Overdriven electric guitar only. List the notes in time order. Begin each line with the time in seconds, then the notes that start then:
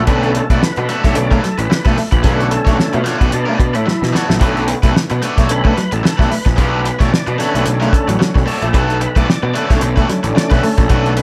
0.08 A3 D4 F#4 B4
0.35 muted overdriven electric guitar stroke
0.51 A3 D4 F#4 B4
0.63 muted overdriven electric guitar stroke
0.78 muted overdriven electric guitar stroke
0.89 A3 D4 F#4 B4
1.04 A3 D4 F#4 C#5
1.16 muted overdriven electric guitar stroke
1.31 A3 D4 F#4 B4
1.43 muted overdriven electric guitar stroke
1.58 muted overdriven electric guitar stroke
1.70 muted overdriven electric guitar stroke
1.85 A3 D4 F#4 B4
1.97 muted overdriven electric guitar stroke
2.12 muted overdriven electric guitar stroke
2.23 A3 D4 F#4 B4
2.50 muted overdriven electric guitar stroke
2.65 A3 D4 F#4 C#5
2.78 muted overdriven electric guitar stroke
2.93 muted overdriven electric guitar stroke
3.04 A3 D4 F#4 C#5
3.19 A3 D4 F#4 B4
3.31 muted overdriven electric guitar stroke
3.46 A3 D4 F#4 B4
3.59 muted overdriven electric guitar stroke
3.74 muted overdriven electric guitar stroke
3.86 muted overdriven electric guitar stroke
4.13 A3 D4 F#4 C#5
4.28 muted overdriven electric guitar stroke
4.40 A3 D4 F#4 B4
4.68 muted overdriven electric guitar stroke
4.83 A3 D4 F#4 B4
4.95 muted overdriven electric guitar stroke
5.10 muted overdriven electric guitar stroke
5.22 A3 D4 F#4 B4
5.37 A3 D4 F#4 C#5
5.50 muted overdriven electric guitar stroke
5.64 A3 D4 F#4 B4
5.77 muted overdriven electric guitar stroke
5.92 muted overdriven electric guitar stroke
6.03 muted overdriven electric guitar stroke
6.18 A3 D4 F#4 B4
6.30 muted overdriven electric guitar stroke
6.45 muted overdriven electric guitar stroke
6.57 A3 D4 F#4 B4
6.84 muted overdriven electric guitar stroke
6.99 A3 D4 F#4 C#5
7.11 muted overdriven electric guitar stroke
7.27 muted overdriven electric guitar stroke
7.39 A3 D4 F#4 C#5
7.54 A3 D4 F#4 B4
7.66 muted overdriven electric guitar stroke
7.80 A3 D4 F#4 B4
7.92 muted overdriven electric guitar stroke
8.08 muted overdriven electric guitar stroke
8.19 muted overdriven electric guitar stroke
8.35 muted overdriven electric guitar stroke
8.46 A3 D4 F#4 C#5
8.62 muted overdriven electric guitar stroke
8.73 A3 D4 F#4 B4
9.01 muted overdriven electric guitar stroke
9.16 A3 D4 F#4 B4
9.28 muted overdriven electric guitar stroke
9.43 muted overdriven electric guitar stroke
9.54 A3 D4 F#4 B4
9.70 A3 D4 F#4 C#5
9.81 muted overdriven electric guitar stroke
9.96 A3 D4 F#4 B4
10.09 muted overdriven electric guitar stroke
10.23 muted overdriven electric guitar stroke
10.35 muted overdriven electric guitar stroke
10.50 A3 D4 F#4 B4
10.62 muted overdriven electric guitar stroke
10.78 muted overdriven electric guitar stroke
10.89 A3 D4 F#4 B4
11.17 muted overdriven electric guitar stroke